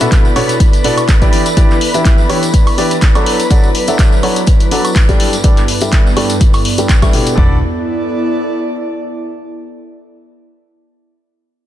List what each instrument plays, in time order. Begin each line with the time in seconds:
Already playing: analog synth pad B3 E4 A4 D5, string machine B4 B5
0.01 grand piano B2 D4 F#4 A4 B4 E5, closed hi-hat, tambourine
0.12 kick, clap, closed hi-hat, tambourine
0.25 tambourine
0.36 grand piano B2 D4 F#4 A4 B4 C#5, open hi-hat, high woodblock
0.49 closed hi-hat, tambourine
0.60 kick, closed hi-hat, tambourine
0.73 closed hi-hat, tambourine
0.84 grand piano B2 D4 F#4 A4 B4 D5, open hi-hat
0.98 closed hi-hat, tambourine, high woodblock
1.09 kick, clap, closed hi-hat, tambourine
1.22 grand piano E3 D4 E4 G4 B4 D5, kick, closed hi-hat, tambourine
1.33 open hi-hat
1.46 closed hi-hat, tambourine
1.57 grand piano E3 D4 E4 G4 B4 D5, kick, closed hi-hat, tambourine
1.70 clap, tambourine
1.81 open hi-hat
1.94 grand piano E3 D4 E4 G4 B4 E5, closed hi-hat, tambourine
2.05 kick, clap, closed hi-hat, tambourine
2.18 tambourine
2.30 grand piano E3 D4 E4 G4 B4 C#5, open hi-hat, high woodblock
2.43 closed hi-hat, tambourine
2.54 kick, closed hi-hat, tambourine
2.67 open hi-hat, tambourine, high woodblock
2.78 grand piano E3 D4 E4 G4 B4 D5, open hi-hat
2.91 closed hi-hat, tambourine
3.01 kick, clap, closed hi-hat, tambourine
3.15 grand piano F#3 D4 F#4 A4 B4 D5, closed hi-hat, tambourine, high woodblock
3.26 analog synth pad F#3, open hi-hat
3.40 closed hi-hat, tambourine
3.50 grand piano F#3 D4 F#4 A4 B4 D5, kick, closed hi-hat, tambourine
3.64 tambourine
3.75 open hi-hat
3.87 grand piano F#3 D4 F#4 A4 B4 E5, closed hi-hat, tambourine
3.99 kick, clap, closed hi-hat, tambourine
4.12 tambourine
4.23 grand piano F#3 D4 F#4 A4 B4 C#5, open hi-hat, high woodblock
4.36 closed hi-hat, tambourine
4.46 kick, closed hi-hat, tambourine
4.60 closed hi-hat, tambourine
4.71 grand piano F#3 D4 F#4 A4 B4 D5, open hi-hat
4.85 closed hi-hat, tambourine, high woodblock
4.96 kick, clap, closed hi-hat
5.09 grand piano G3 D4 G4 A4 B4 D5, kick, closed hi-hat, tambourine
5.20 analog synth pad G2, open hi-hat
5.27 analog synth pad B3
5.33 closed hi-hat, tambourine
5.44 grand piano G3 D4 G4 A4 B4 D5, kick, closed hi-hat, tambourine
5.57 clap, closed hi-hat, tambourine
5.68 open hi-hat
5.81 grand piano G3 D4 G4 A4 B4 E5, closed hi-hat, tambourine
5.92 kick, clap, closed hi-hat
6.07 tambourine
6.17 grand piano G3 D4 G4 A4 B4 D5, open hi-hat, high woodblock
6.29 closed hi-hat, tambourine
6.41 kick, closed hi-hat, tambourine
6.53 open hi-hat, tambourine, high woodblock
6.65 open hi-hat
6.78 grand piano G3 D4 G4 A4 B4 G5, closed hi-hat, tambourine
6.89 kick, clap, closed hi-hat, tambourine
7.02 grand piano G3 D4 G4 A4 B4 E5, kick, closed hi-hat, tambourine, high woodblock
7.13 grand piano B2 D4 G4 A4 B4 D5, open hi-hat
7.27 closed hi-hat, tambourine
7.38 fingered electric bass B1, analog synth pad B3, grand piano D4 F#4 A4 B4 D5, kick, floor tom
7.46 analog synth pad E4
7.53 analog synth pad A4
7.60 analog synth pad D5